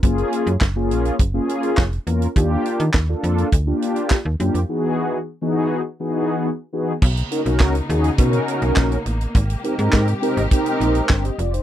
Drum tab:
CC |----------------|----------------|----------------|x---------------|
HH |xxxx--xxx-xx-xxx|x-xx--xxx-xx--xx|----------------|-xxx-xxxxxxx-xxx|
CP |----x-------x---|----x-------x---|----------------|----x-------x---|
SD |----o-------o---|----o-------o---|----------------|----o-------o---|
BD |o---o---o---o---|o---o---o---o---|----------------|o---o---o---o---|

CC |----------------|
HH |xxxx-xxxxxxx-xxx|
CP |----x-------x---|
SD |----o-------o---|
BD |o---o---o---o---|